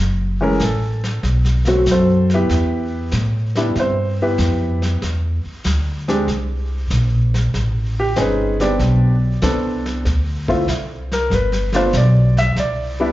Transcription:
Already playing: upright bass F#1
0.41 grand piano E3 G#3 A3 C#4 A#4
0.60 upright bass A1, grand piano A4, snare, hi-hat pedal
1.04 snare
1.23 upright bass B1, brush sweep, snare
1.45 snare
1.65 grand piano F#3 A3 C4 F#4, snare
1.86 upright bass F#2, snare, hi-hat pedal
1.91 grand piano C4 F#4 A4 C5
2.30 snare
2.34 grand piano B3 E4 G4 B4
2.49 upright bass E2, brush sweep, snare
3.12 upright bass A2, snare, hi-hat pedal
3.55 grand piano G3 B3 D4 E4, snare
3.75 upright bass G2, brush sweep, snare
3.80 grand piano C4 C5
4.22 grand piano B3 E4 G4 B4
4.38 upright bass F2, snare, hi-hat pedal
4.82 snare
5.02 upright bass E2, brush sweep, snare
5.45 muted upright bass stroke
5.64 upright bass D2, snare, hi-hat pedal
6.08 grand piano G#3 C4 D4 G4, snare
6.28 upright bass C2, brush sweep, snare
6.90 upright bass A#1, snare, hi-hat pedal
7.34 snare
7.54 upright bass A1, brush sweep, snare
8.00 grand piano G4
8.16 upright bass G1, grand piano C4 C#4 D#4 G#4 B4, snare, hi-hat pedal
8.60 grand piano B3 C4 D4 G4 D5, snare
8.79 upright bass B1, brush sweep, snare
9.42 upright bass C2, grand piano B3 C4 D4 A4, snare, hi-hat pedal
9.86 snare
10.05 upright bass D2, brush sweep, snare
10.48 grand piano A3 C4 E4 F4, kick
10.67 upright bass C2, snare, hi-hat pedal
11.12 grand piano A#4, snare
11.30 upright bass G1, grand piano B4, brush sweep, snare
11.52 snare
11.73 grand piano A3 B3 D4 F4 C5, snare
11.93 upright bass B1, snare, hi-hat pedal
11.97 grand piano D5
12.37 grand piano E5, snare
12.56 upright bass C2, brush sweep, snare
12.60 grand piano D5
13.00 grand piano G3 B3 D4 E4 G4

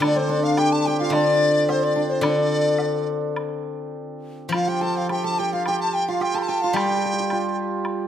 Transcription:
Already playing: hammered dulcimer C4 F4 G4
0.00 guzheng D3, hammered dulcimer D4, dizi D5, high woodblock
0.05 dizi D5
0.16 hammered dulcimer C4, dizi C5 D5
0.20 dizi C5
0.29 hammered dulcimer D4, dizi D5
0.44 dizi F5
0.57 hammered dulcimer G4, dizi G5, high woodblock
0.72 dizi A5
0.85 hammered dulcimer G4, dizi G5
0.99 hammered dulcimer F4, dizi F5
1.10 guzheng D3, dizi D5, high woodblock
1.15 hammered dulcimer D4
1.68 hammered dulcimer C4, dizi C5, low woodblock
1.83 dizi D5
1.96 hammered dulcimer D4, dizi D5
2.10 dizi C5
2.21 guzheng D3, hammered dulcimer D4, dizi D5, high woodblock
2.29 dizi C5
2.38 dizi D5
2.78 low woodblock
3.36 high woodblock
4.49 guzheng F3, dizi F5, high woodblock
4.54 hammered dulcimer F4, dizi F5
4.67 hammered dulcimer G4, dizi G5
4.81 hammered dulcimer A4, dizi A5
4.97 dizi F5
5.09 hammered dulcimer G4, dizi G5, high woodblock
5.24 hammered dulcimer A4, dizi A5
5.35 hammered dulcimer G4, dizi G5 A5
5.53 hammered dulcimer F4, dizi F5
5.66 hammered dulcimer G4, dizi G5, high woodblock
5.80 dizi A5
5.94 dizi G5
6.08 hammered dulcimer F4, dizi F5
6.21 hammered dulcimer G4, dizi G5, low woodblock
6.34 hammered dulcimer A4, dizi A5
6.39 dizi A5 C6
6.48 hammered dulcimer G4, dizi G5
6.62 hammered dulcimer F4, dizi F5
6.73 guzheng G3, hammered dulcimer G4, dizi G5, high woodblock
6.85 hammered dulcimer G4
6.91 hammered dulcimer G4
6.97 hammered dulcimer G4
7.05 hammered dulcimer G4
7.13 hammered dulcimer G4
7.20 hammered dulcimer G4
7.30 hammered dulcimer F4, high woodblock
7.85 high woodblock

